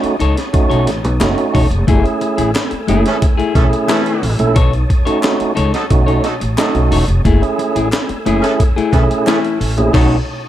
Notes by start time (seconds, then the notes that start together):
Already playing: A3 C#4 D#4 F#4 C#5 A5 D#6
0.03 muted clean electric guitar stroke, muted upright bass stroke, closed hi-hat
0.20 C#2 D#4 A4 C#5, closed hi-hat
0.37 muted clean electric guitar stroke, snare, closed hi-hat
0.53 A3 C#4 D#4 F#4, muted clean electric guitar stroke, kick, closed hi-hat
0.70 B1 D#4 A4 C#5, closed hi-hat
0.86 A1, muted clean electric guitar stroke, snare, closed hi-hat
1.03 B1, muted clean electric guitar stroke, closed hi-hat
1.20 F#1 A3 C#4 D#4 F#4, muted clean electric guitar stroke, snare, clap, closed hi-hat
1.38 closed hi-hat
1.54 E1 D#4 A4 C#5, kick, open hi-hat
1.71 F1, muted clean electric guitar stroke, closed hi-hat
1.87 F#1 A3 E4 G#4 G#5 E6, kick, closed hi-hat
2.04 A3 C#4 E4 G#4, closed hi-hat
2.21 muted clean electric guitar stroke, closed hi-hat
2.37 A1 A3 E4 G#4, closed hi-hat
2.55 snare, clap, closed hi-hat
2.71 muted clean electric guitar stroke, muted upright bass stroke, closed hi-hat
2.87 F#1 A3 C#4 E4 G#4, closed hi-hat
3.05 E3 C#4 A4, muted clean electric guitar stroke, snare, closed hi-hat
3.21 muted clean electric guitar stroke, kick, closed hi-hat
3.37 A3 E4 G#4, muted upright bass stroke, closed hi-hat
3.55 B1 E3 A3 C#4 E4 G#4 A4, muted clean electric guitar stroke, kick, snare, closed hi-hat
3.71 muted clean electric guitar stroke, closed hi-hat
3.88 E3 A3 C#4 E4 A4, snare, clap, closed hi-hat
4.06 closed hi-hat
4.22 A1, muted clean electric guitar stroke, open hi-hat
4.38 A#1 A3 C#4 E4 A4, muted clean electric guitar stroke, closed hi-hat
4.55 B1 D#4 A4 C#5 A5 D#6, kick, closed hi-hat
4.73 closed hi-hat
4.89 muted clean electric guitar stroke, kick, closed hi-hat
5.05 A3 C#4 D#4 F#4 A4 C#5, muted upright bass stroke, closed hi-hat
5.23 snare, clap, closed hi-hat
5.39 muted clean electric guitar stroke, muted upright bass stroke, closed hi-hat
5.55 C#2 D#4 A4 C#5, closed hi-hat
5.73 F#3 D#4 A4, muted clean electric guitar stroke, snare, closed hi-hat
5.90 B1 A3 C#4 D#4 F#4, muted clean electric guitar stroke, kick, closed hi-hat
6.06 D#4 A4 C#5, closed hi-hat
6.23 F#3 D#4 A4, muted clean electric guitar stroke, snare, closed hi-hat
6.40 A1, muted clean electric guitar stroke, closed hi-hat
6.58 F#3 A3 C#4 D#4 F#4 A4, muted clean electric guitar stroke, snare, clap, closed hi-hat
6.75 B1, closed hi-hat
6.91 E1 D#4 A4 C#5, open hi-hat
7.08 F1, muted clean electric guitar stroke, closed hi-hat
7.25 F#1 A3 E4 G#4 G#5 E6, kick, closed hi-hat
7.42 A3 C#4 E4 G#4, closed hi-hat
7.58 muted clean electric guitar stroke, closed hi-hat
7.76 A1 A3 E4 G#4, closed hi-hat
7.92 snare, clap, closed hi-hat
8.09 muted clean electric guitar stroke, muted upright bass stroke, closed hi-hat
8.26 F#1 A3 C#4 E4 G#4, closed hi-hat
8.42 E3 C#4 A4, muted clean electric guitar stroke, snare, closed hi-hat
8.60 muted clean electric guitar stroke, kick, closed hi-hat
8.76 A3 E4 G#4, muted upright bass stroke, closed hi-hat
8.92 B1 E3 A3 C#4 E4 G#4 A4, kick, snare, closed hi-hat
9.10 muted clean electric guitar stroke, closed hi-hat
9.26 E3 A3 C#4 E4 A4, snare, clap, closed hi-hat
9.45 closed hi-hat
9.60 A1, muted clean electric guitar stroke, open hi-hat
9.77 A#1 A3 C#4 E4 G#4, muted clean electric guitar stroke, closed hi-hat
9.93 B1 F#3 A3 C#4 D#4 F#4 A4 C#5 A5 D#6, kick, snare, crash